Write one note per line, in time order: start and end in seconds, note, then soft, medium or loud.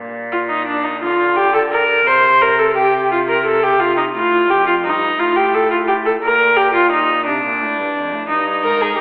0.00 1.04 A#2 medium
0.32 0.39 F4 medium
0.50 0.66 D#4 medium
0.67 0.86 D4 medium
0.84 1.01 D#4 medium
1.02 2.07 D3 medium
1.02 1.38 F4 medium
1.37 1.54 G4 medium
1.54 1.61 A4 medium
1.72 2.08 A#4 medium
2.07 4.11 C3 medium
2.07 2.43 C5 medium
2.42 2.61 A#4 medium
2.59 2.76 A4 medium
2.76 3.11 G4 medium
3.12 3.19 F4 medium
3.29 3.45 A#4 medium
3.46 3.65 A4 medium
3.63 3.81 G4 medium
3.80 3.97 F4 medium
3.97 4.04 D#4 medium
4.15 4.51 A2 medium
4.15 4.52 F4 medium
4.49 4.86 F2 medium
4.49 4.66 G4 medium
4.67 4.74 F4 medium
4.85 5.19 G2 medium
4.85 5.21 D#4 medium
5.19 6.21 A2 medium
5.19 5.38 F4 medium
5.36 5.56 G4 medium
5.54 5.70 A4 medium
5.71 5.78 F4 medium
5.88 5.95 G4 medium
6.06 6.13 A4 medium
6.23 7.28 A#2 medium
6.23 6.58 A#4 medium
6.56 6.73 G4 medium
6.74 6.90 F4 medium
6.91 7.25 D#4 medium
7.26 7.43 C3 medium
7.26 8.27 D4 medium
7.44 7.63 A#2 medium
7.61 7.80 A2 medium
7.78 7.96 G2 medium
7.96 8.15 F2 medium
8.13 8.29 A2 medium
8.29 8.66 G2 medium
8.29 9.01 D#4 medium
8.64 8.98 G#2 medium
8.64 8.83 A#4 medium
8.81 8.96 G#4 medium
8.97 9.01 G4 medium